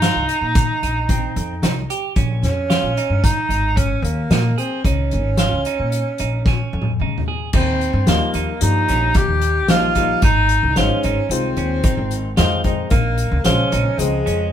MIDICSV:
0, 0, Header, 1, 6, 480
1, 0, Start_track
1, 0, Tempo, 538117
1, 1929, Time_signature, 5, 2, 24, 8
1, 12955, End_track
2, 0, Start_track
2, 0, Title_t, "Clean electric guitar"
2, 0, Program_c, 0, 27
2, 19, Note_on_c, 0, 65, 64
2, 215, Note_off_c, 0, 65, 0
2, 255, Note_on_c, 0, 63, 77
2, 652, Note_off_c, 0, 63, 0
2, 742, Note_on_c, 0, 63, 57
2, 936, Note_off_c, 0, 63, 0
2, 981, Note_on_c, 0, 60, 73
2, 1374, Note_off_c, 0, 60, 0
2, 1459, Note_on_c, 0, 63, 65
2, 1654, Note_off_c, 0, 63, 0
2, 1697, Note_on_c, 0, 67, 64
2, 1892, Note_off_c, 0, 67, 0
2, 1930, Note_on_c, 0, 61, 75
2, 2327, Note_off_c, 0, 61, 0
2, 2407, Note_on_c, 0, 65, 70
2, 2606, Note_off_c, 0, 65, 0
2, 2656, Note_on_c, 0, 63, 72
2, 3050, Note_off_c, 0, 63, 0
2, 3120, Note_on_c, 0, 63, 55
2, 3321, Note_off_c, 0, 63, 0
2, 3354, Note_on_c, 0, 61, 84
2, 3757, Note_off_c, 0, 61, 0
2, 3847, Note_on_c, 0, 63, 64
2, 4045, Note_off_c, 0, 63, 0
2, 4083, Note_on_c, 0, 68, 64
2, 4282, Note_off_c, 0, 68, 0
2, 4329, Note_on_c, 0, 63, 67
2, 4725, Note_off_c, 0, 63, 0
2, 4808, Note_on_c, 0, 65, 72
2, 5005, Note_off_c, 0, 65, 0
2, 5051, Note_on_c, 0, 63, 71
2, 5446, Note_off_c, 0, 63, 0
2, 5530, Note_on_c, 0, 63, 62
2, 5726, Note_off_c, 0, 63, 0
2, 5774, Note_on_c, 0, 61, 81
2, 6168, Note_off_c, 0, 61, 0
2, 6257, Note_on_c, 0, 63, 62
2, 6450, Note_off_c, 0, 63, 0
2, 6492, Note_on_c, 0, 68, 59
2, 6687, Note_off_c, 0, 68, 0
2, 6732, Note_on_c, 0, 63, 76
2, 7126, Note_off_c, 0, 63, 0
2, 7211, Note_on_c, 0, 65, 63
2, 7407, Note_off_c, 0, 65, 0
2, 7448, Note_on_c, 0, 63, 73
2, 7844, Note_off_c, 0, 63, 0
2, 7926, Note_on_c, 0, 61, 54
2, 8124, Note_off_c, 0, 61, 0
2, 8164, Note_on_c, 0, 63, 88
2, 8563, Note_off_c, 0, 63, 0
2, 8646, Note_on_c, 0, 65, 71
2, 8844, Note_off_c, 0, 65, 0
2, 8882, Note_on_c, 0, 63, 66
2, 9082, Note_off_c, 0, 63, 0
2, 9126, Note_on_c, 0, 63, 80
2, 9524, Note_off_c, 0, 63, 0
2, 9609, Note_on_c, 0, 65, 74
2, 9806, Note_off_c, 0, 65, 0
2, 9852, Note_on_c, 0, 63, 77
2, 10248, Note_off_c, 0, 63, 0
2, 10325, Note_on_c, 0, 61, 61
2, 10525, Note_off_c, 0, 61, 0
2, 10559, Note_on_c, 0, 63, 76
2, 10961, Note_off_c, 0, 63, 0
2, 11039, Note_on_c, 0, 65, 72
2, 11242, Note_off_c, 0, 65, 0
2, 11285, Note_on_c, 0, 63, 62
2, 11486, Note_off_c, 0, 63, 0
2, 11519, Note_on_c, 0, 63, 76
2, 11922, Note_off_c, 0, 63, 0
2, 12002, Note_on_c, 0, 65, 70
2, 12204, Note_off_c, 0, 65, 0
2, 12243, Note_on_c, 0, 63, 72
2, 12645, Note_off_c, 0, 63, 0
2, 12721, Note_on_c, 0, 61, 65
2, 12925, Note_off_c, 0, 61, 0
2, 12955, End_track
3, 0, Start_track
3, 0, Title_t, "Tenor saxophone"
3, 0, Program_c, 1, 66
3, 0, Note_on_c, 1, 63, 79
3, 1692, Note_off_c, 1, 63, 0
3, 2177, Note_on_c, 1, 61, 90
3, 2890, Note_on_c, 1, 63, 87
3, 2903, Note_off_c, 1, 61, 0
3, 3369, Note_on_c, 1, 61, 82
3, 3382, Note_off_c, 1, 63, 0
3, 3594, Note_on_c, 1, 58, 69
3, 3607, Note_off_c, 1, 61, 0
3, 4094, Note_on_c, 1, 60, 73
3, 4108, Note_off_c, 1, 58, 0
3, 4322, Note_off_c, 1, 60, 0
3, 4327, Note_on_c, 1, 61, 86
3, 6208, Note_off_c, 1, 61, 0
3, 6734, Note_on_c, 1, 60, 84
3, 7213, Note_on_c, 1, 58, 71
3, 7227, Note_off_c, 1, 60, 0
3, 7691, Note_on_c, 1, 63, 88
3, 7704, Note_off_c, 1, 58, 0
3, 8177, Note_on_c, 1, 67, 94
3, 8190, Note_off_c, 1, 63, 0
3, 8651, Note_on_c, 1, 65, 89
3, 8664, Note_off_c, 1, 67, 0
3, 9128, Note_off_c, 1, 65, 0
3, 9135, Note_on_c, 1, 63, 94
3, 9616, Note_on_c, 1, 61, 85
3, 9630, Note_off_c, 1, 63, 0
3, 10084, Note_on_c, 1, 60, 71
3, 10098, Note_off_c, 1, 61, 0
3, 11046, Note_off_c, 1, 60, 0
3, 11508, Note_on_c, 1, 58, 90
3, 11996, Note_on_c, 1, 61, 98
3, 12009, Note_off_c, 1, 58, 0
3, 12473, Note_on_c, 1, 56, 90
3, 12486, Note_off_c, 1, 61, 0
3, 12955, Note_off_c, 1, 56, 0
3, 12955, End_track
4, 0, Start_track
4, 0, Title_t, "Grand piano"
4, 0, Program_c, 2, 0
4, 7196, Note_on_c, 2, 55, 59
4, 7199, Note_on_c, 2, 58, 56
4, 7201, Note_on_c, 2, 53, 62
4, 7204, Note_on_c, 2, 63, 69
4, 7574, Note_off_c, 2, 55, 0
4, 7575, Note_off_c, 2, 58, 0
4, 7576, Note_off_c, 2, 53, 0
4, 7578, Note_off_c, 2, 63, 0
4, 7682, Note_on_c, 2, 53, 61
4, 7682, Note_on_c, 2, 55, 52
4, 7684, Note_on_c, 2, 63, 71
4, 7688, Note_on_c, 2, 58, 52
4, 8432, Note_off_c, 2, 53, 0
4, 8432, Note_off_c, 2, 55, 0
4, 8433, Note_off_c, 2, 63, 0
4, 8435, Note_off_c, 2, 58, 0
4, 8639, Note_on_c, 2, 55, 57
4, 8641, Note_on_c, 2, 53, 74
4, 8644, Note_on_c, 2, 63, 80
4, 8650, Note_on_c, 2, 58, 64
4, 8829, Note_off_c, 2, 55, 0
4, 8830, Note_off_c, 2, 53, 0
4, 8831, Note_off_c, 2, 63, 0
4, 8834, Note_off_c, 2, 58, 0
4, 8890, Note_on_c, 2, 55, 54
4, 8890, Note_on_c, 2, 63, 72
4, 8892, Note_on_c, 2, 53, 65
4, 8894, Note_on_c, 2, 58, 56
4, 9127, Note_off_c, 2, 55, 0
4, 9127, Note_off_c, 2, 63, 0
4, 9128, Note_off_c, 2, 53, 0
4, 9129, Note_off_c, 2, 58, 0
4, 9612, Note_on_c, 2, 56, 64
4, 9613, Note_on_c, 2, 51, 60
4, 9614, Note_on_c, 2, 63, 69
4, 9614, Note_on_c, 2, 72, 64
4, 9984, Note_off_c, 2, 51, 0
4, 9984, Note_off_c, 2, 56, 0
4, 9984, Note_off_c, 2, 63, 0
4, 9984, Note_off_c, 2, 72, 0
4, 10083, Note_on_c, 2, 56, 55
4, 10087, Note_on_c, 2, 51, 55
4, 10087, Note_on_c, 2, 60, 58
4, 10090, Note_on_c, 2, 65, 68
4, 10835, Note_off_c, 2, 56, 0
4, 10837, Note_off_c, 2, 51, 0
4, 10837, Note_off_c, 2, 60, 0
4, 10838, Note_off_c, 2, 65, 0
4, 11042, Note_on_c, 2, 56, 77
4, 11044, Note_on_c, 2, 51, 83
4, 11044, Note_on_c, 2, 60, 73
4, 11044, Note_on_c, 2, 63, 95
4, 11232, Note_off_c, 2, 56, 0
4, 11233, Note_off_c, 2, 51, 0
4, 11233, Note_off_c, 2, 60, 0
4, 11233, Note_off_c, 2, 63, 0
4, 11276, Note_on_c, 2, 51, 72
4, 11281, Note_on_c, 2, 56, 66
4, 11283, Note_on_c, 2, 60, 65
4, 11286, Note_on_c, 2, 63, 78
4, 11522, Note_off_c, 2, 51, 0
4, 11524, Note_off_c, 2, 56, 0
4, 11526, Note_off_c, 2, 60, 0
4, 11527, Note_off_c, 2, 63, 0
4, 12000, Note_on_c, 2, 56, 61
4, 12004, Note_on_c, 2, 72, 76
4, 12005, Note_on_c, 2, 49, 69
4, 12005, Note_on_c, 2, 53, 65
4, 12380, Note_off_c, 2, 56, 0
4, 12382, Note_off_c, 2, 53, 0
4, 12382, Note_off_c, 2, 72, 0
4, 12383, Note_off_c, 2, 49, 0
4, 12488, Note_on_c, 2, 53, 58
4, 12490, Note_on_c, 2, 49, 58
4, 12491, Note_on_c, 2, 56, 63
4, 12492, Note_on_c, 2, 60, 65
4, 12955, Note_off_c, 2, 49, 0
4, 12955, Note_off_c, 2, 53, 0
4, 12955, Note_off_c, 2, 56, 0
4, 12955, Note_off_c, 2, 60, 0
4, 12955, End_track
5, 0, Start_track
5, 0, Title_t, "Upright bass"
5, 0, Program_c, 3, 32
5, 133, Note_on_c, 3, 36, 71
5, 230, Note_off_c, 3, 36, 0
5, 368, Note_on_c, 3, 46, 70
5, 565, Note_off_c, 3, 46, 0
5, 736, Note_on_c, 3, 34, 67
5, 1125, Note_off_c, 3, 34, 0
5, 1215, Note_on_c, 3, 41, 98
5, 1409, Note_off_c, 3, 41, 0
5, 1449, Note_on_c, 3, 36, 81
5, 1645, Note_off_c, 3, 36, 0
5, 1929, Note_on_c, 3, 34, 87
5, 2162, Note_on_c, 3, 41, 79
5, 2175, Note_off_c, 3, 34, 0
5, 2458, Note_off_c, 3, 41, 0
5, 2521, Note_on_c, 3, 34, 75
5, 2621, Note_off_c, 3, 34, 0
5, 2762, Note_on_c, 3, 43, 70
5, 2960, Note_off_c, 3, 43, 0
5, 3112, Note_on_c, 3, 32, 77
5, 3509, Note_off_c, 3, 32, 0
5, 3589, Note_on_c, 3, 39, 91
5, 3792, Note_off_c, 3, 39, 0
5, 3837, Note_on_c, 3, 46, 86
5, 4036, Note_off_c, 3, 46, 0
5, 4322, Note_on_c, 3, 37, 79
5, 4572, Note_on_c, 3, 32, 80
5, 4586, Note_off_c, 3, 37, 0
5, 4863, Note_off_c, 3, 32, 0
5, 4928, Note_on_c, 3, 37, 65
5, 5024, Note_off_c, 3, 37, 0
5, 5165, Note_on_c, 3, 46, 65
5, 5360, Note_off_c, 3, 46, 0
5, 5525, Note_on_c, 3, 34, 66
5, 5916, Note_off_c, 3, 34, 0
5, 6003, Note_on_c, 3, 41, 92
5, 6199, Note_off_c, 3, 41, 0
5, 6245, Note_on_c, 3, 49, 71
5, 6440, Note_off_c, 3, 49, 0
5, 6719, Note_on_c, 3, 39, 84
5, 7014, Note_off_c, 3, 39, 0
5, 7075, Note_on_c, 3, 43, 89
5, 7176, Note_off_c, 3, 43, 0
5, 7203, Note_on_c, 3, 39, 77
5, 7301, Note_off_c, 3, 39, 0
5, 7440, Note_on_c, 3, 39, 76
5, 7539, Note_off_c, 3, 39, 0
5, 7684, Note_on_c, 3, 43, 81
5, 7880, Note_off_c, 3, 43, 0
5, 7930, Note_on_c, 3, 34, 79
5, 8123, Note_off_c, 3, 34, 0
5, 8281, Note_on_c, 3, 39, 73
5, 8637, Note_off_c, 3, 39, 0
5, 8637, Note_on_c, 3, 34, 87
5, 9032, Note_off_c, 3, 34, 0
5, 9120, Note_on_c, 3, 32, 79
5, 9416, Note_off_c, 3, 32, 0
5, 9482, Note_on_c, 3, 36, 83
5, 9581, Note_off_c, 3, 36, 0
5, 9602, Note_on_c, 3, 32, 75
5, 9701, Note_off_c, 3, 32, 0
5, 9849, Note_on_c, 3, 32, 89
5, 9946, Note_off_c, 3, 32, 0
5, 10073, Note_on_c, 3, 36, 82
5, 10274, Note_off_c, 3, 36, 0
5, 10314, Note_on_c, 3, 39, 82
5, 10515, Note_off_c, 3, 39, 0
5, 10680, Note_on_c, 3, 32, 80
5, 11041, Note_on_c, 3, 41, 82
5, 11054, Note_off_c, 3, 32, 0
5, 11436, Note_off_c, 3, 41, 0
5, 11519, Note_on_c, 3, 34, 89
5, 11818, Note_off_c, 3, 34, 0
5, 11877, Note_on_c, 3, 37, 94
5, 11980, Note_off_c, 3, 37, 0
5, 11996, Note_on_c, 3, 34, 80
5, 12099, Note_off_c, 3, 34, 0
5, 12240, Note_on_c, 3, 34, 94
5, 12342, Note_off_c, 3, 34, 0
5, 12471, Note_on_c, 3, 37, 92
5, 12675, Note_off_c, 3, 37, 0
5, 12729, Note_on_c, 3, 41, 78
5, 12926, Note_off_c, 3, 41, 0
5, 12955, End_track
6, 0, Start_track
6, 0, Title_t, "Drums"
6, 18, Note_on_c, 9, 38, 81
6, 18, Note_on_c, 9, 42, 61
6, 107, Note_off_c, 9, 38, 0
6, 107, Note_off_c, 9, 42, 0
6, 257, Note_on_c, 9, 42, 55
6, 346, Note_off_c, 9, 42, 0
6, 492, Note_on_c, 9, 42, 83
6, 494, Note_on_c, 9, 36, 111
6, 581, Note_off_c, 9, 42, 0
6, 583, Note_off_c, 9, 36, 0
6, 740, Note_on_c, 9, 42, 51
6, 830, Note_off_c, 9, 42, 0
6, 971, Note_on_c, 9, 42, 68
6, 973, Note_on_c, 9, 36, 92
6, 1060, Note_off_c, 9, 42, 0
6, 1062, Note_off_c, 9, 36, 0
6, 1217, Note_on_c, 9, 42, 52
6, 1306, Note_off_c, 9, 42, 0
6, 1454, Note_on_c, 9, 38, 84
6, 1454, Note_on_c, 9, 42, 61
6, 1543, Note_off_c, 9, 38, 0
6, 1543, Note_off_c, 9, 42, 0
6, 1696, Note_on_c, 9, 42, 50
6, 1785, Note_off_c, 9, 42, 0
6, 1926, Note_on_c, 9, 42, 56
6, 1929, Note_on_c, 9, 36, 79
6, 2015, Note_off_c, 9, 42, 0
6, 2018, Note_off_c, 9, 36, 0
6, 2171, Note_on_c, 9, 38, 29
6, 2171, Note_on_c, 9, 42, 46
6, 2260, Note_off_c, 9, 38, 0
6, 2260, Note_off_c, 9, 42, 0
6, 2410, Note_on_c, 9, 38, 84
6, 2410, Note_on_c, 9, 42, 56
6, 2499, Note_off_c, 9, 38, 0
6, 2499, Note_off_c, 9, 42, 0
6, 2651, Note_on_c, 9, 42, 48
6, 2740, Note_off_c, 9, 42, 0
6, 2887, Note_on_c, 9, 36, 99
6, 2888, Note_on_c, 9, 38, 36
6, 2888, Note_on_c, 9, 42, 72
6, 2977, Note_off_c, 9, 36, 0
6, 2978, Note_off_c, 9, 38, 0
6, 2978, Note_off_c, 9, 42, 0
6, 3126, Note_on_c, 9, 42, 49
6, 3215, Note_off_c, 9, 42, 0
6, 3364, Note_on_c, 9, 36, 84
6, 3364, Note_on_c, 9, 42, 73
6, 3453, Note_off_c, 9, 36, 0
6, 3453, Note_off_c, 9, 42, 0
6, 3608, Note_on_c, 9, 42, 51
6, 3697, Note_off_c, 9, 42, 0
6, 3842, Note_on_c, 9, 38, 93
6, 3842, Note_on_c, 9, 42, 62
6, 3931, Note_off_c, 9, 38, 0
6, 3931, Note_off_c, 9, 42, 0
6, 4088, Note_on_c, 9, 42, 52
6, 4177, Note_off_c, 9, 42, 0
6, 4322, Note_on_c, 9, 36, 85
6, 4324, Note_on_c, 9, 42, 64
6, 4411, Note_off_c, 9, 36, 0
6, 4413, Note_off_c, 9, 42, 0
6, 4561, Note_on_c, 9, 42, 48
6, 4650, Note_off_c, 9, 42, 0
6, 4793, Note_on_c, 9, 38, 85
6, 4793, Note_on_c, 9, 42, 68
6, 4883, Note_off_c, 9, 38, 0
6, 4883, Note_off_c, 9, 42, 0
6, 5039, Note_on_c, 9, 42, 51
6, 5128, Note_off_c, 9, 42, 0
6, 5281, Note_on_c, 9, 42, 76
6, 5370, Note_off_c, 9, 42, 0
6, 5515, Note_on_c, 9, 42, 51
6, 5604, Note_off_c, 9, 42, 0
6, 5753, Note_on_c, 9, 38, 48
6, 5760, Note_on_c, 9, 36, 91
6, 5842, Note_off_c, 9, 38, 0
6, 5849, Note_off_c, 9, 36, 0
6, 6079, Note_on_c, 9, 47, 61
6, 6168, Note_off_c, 9, 47, 0
6, 6240, Note_on_c, 9, 45, 53
6, 6329, Note_off_c, 9, 45, 0
6, 6402, Note_on_c, 9, 43, 69
6, 6491, Note_off_c, 9, 43, 0
6, 6717, Note_on_c, 9, 49, 79
6, 6722, Note_on_c, 9, 36, 90
6, 6807, Note_off_c, 9, 49, 0
6, 6811, Note_off_c, 9, 36, 0
6, 6968, Note_on_c, 9, 42, 46
6, 7057, Note_off_c, 9, 42, 0
6, 7197, Note_on_c, 9, 38, 96
6, 7197, Note_on_c, 9, 42, 60
6, 7286, Note_off_c, 9, 38, 0
6, 7286, Note_off_c, 9, 42, 0
6, 7436, Note_on_c, 9, 42, 55
6, 7525, Note_off_c, 9, 42, 0
6, 7679, Note_on_c, 9, 42, 87
6, 7768, Note_off_c, 9, 42, 0
6, 7925, Note_on_c, 9, 38, 27
6, 7925, Note_on_c, 9, 42, 56
6, 8014, Note_off_c, 9, 38, 0
6, 8014, Note_off_c, 9, 42, 0
6, 8156, Note_on_c, 9, 38, 26
6, 8156, Note_on_c, 9, 42, 68
6, 8162, Note_on_c, 9, 36, 99
6, 8245, Note_off_c, 9, 38, 0
6, 8245, Note_off_c, 9, 42, 0
6, 8251, Note_off_c, 9, 36, 0
6, 8398, Note_on_c, 9, 42, 54
6, 8487, Note_off_c, 9, 42, 0
6, 8638, Note_on_c, 9, 38, 92
6, 8638, Note_on_c, 9, 42, 68
6, 8727, Note_off_c, 9, 38, 0
6, 8727, Note_off_c, 9, 42, 0
6, 8877, Note_on_c, 9, 42, 59
6, 8882, Note_on_c, 9, 36, 55
6, 8967, Note_off_c, 9, 42, 0
6, 8971, Note_off_c, 9, 36, 0
6, 9115, Note_on_c, 9, 42, 71
6, 9121, Note_on_c, 9, 36, 96
6, 9205, Note_off_c, 9, 42, 0
6, 9210, Note_off_c, 9, 36, 0
6, 9356, Note_on_c, 9, 42, 51
6, 9446, Note_off_c, 9, 42, 0
6, 9599, Note_on_c, 9, 38, 79
6, 9599, Note_on_c, 9, 42, 60
6, 9688, Note_off_c, 9, 38, 0
6, 9688, Note_off_c, 9, 42, 0
6, 9840, Note_on_c, 9, 42, 51
6, 9929, Note_off_c, 9, 42, 0
6, 10087, Note_on_c, 9, 42, 84
6, 10176, Note_off_c, 9, 42, 0
6, 10317, Note_on_c, 9, 42, 49
6, 10406, Note_off_c, 9, 42, 0
6, 10557, Note_on_c, 9, 42, 64
6, 10560, Note_on_c, 9, 36, 92
6, 10646, Note_off_c, 9, 42, 0
6, 10649, Note_off_c, 9, 36, 0
6, 10800, Note_on_c, 9, 42, 51
6, 10890, Note_off_c, 9, 42, 0
6, 11035, Note_on_c, 9, 38, 94
6, 11035, Note_on_c, 9, 42, 67
6, 11125, Note_off_c, 9, 38, 0
6, 11125, Note_off_c, 9, 42, 0
6, 11275, Note_on_c, 9, 42, 52
6, 11279, Note_on_c, 9, 36, 66
6, 11364, Note_off_c, 9, 42, 0
6, 11368, Note_off_c, 9, 36, 0
6, 11510, Note_on_c, 9, 42, 69
6, 11518, Note_on_c, 9, 36, 83
6, 11599, Note_off_c, 9, 42, 0
6, 11607, Note_off_c, 9, 36, 0
6, 11753, Note_on_c, 9, 42, 54
6, 11842, Note_off_c, 9, 42, 0
6, 11992, Note_on_c, 9, 38, 90
6, 11992, Note_on_c, 9, 42, 67
6, 12081, Note_off_c, 9, 38, 0
6, 12081, Note_off_c, 9, 42, 0
6, 12239, Note_on_c, 9, 42, 54
6, 12328, Note_off_c, 9, 42, 0
6, 12479, Note_on_c, 9, 42, 94
6, 12568, Note_off_c, 9, 42, 0
6, 12727, Note_on_c, 9, 42, 54
6, 12817, Note_off_c, 9, 42, 0
6, 12955, End_track
0, 0, End_of_file